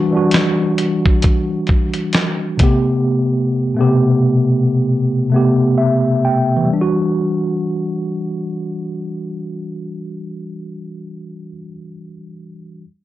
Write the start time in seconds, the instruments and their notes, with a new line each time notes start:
Already playing: tine electric piano E3 G3 D4 F#4
0.10 tine electric piano E3 G3
0.14 tine electric piano D4 F#4
0.31 snare, closed hi-hat
0.78 closed hi-hat
1.05 kick
1.22 kick, closed hi-hat
1.67 kick, closed hi-hat
1.93 closed hi-hat
2.13 snare, closed hi-hat
2.57 tine electric piano C3 A3, kick, closed hi-hat
2.61 tine electric piano B3 G4
3.75 tine electric piano B2 A3
3.79 tine electric piano C3 B3 G4
5.30 tine electric piano C3 A3
5.34 tine electric piano B3 G4
5.78 tine electric piano E5
6.25 tine electric piano G5
6.57 tine electric piano E3
6.65 tine electric piano G3
6.73 tine electric piano D4
6.81 tine electric piano F#4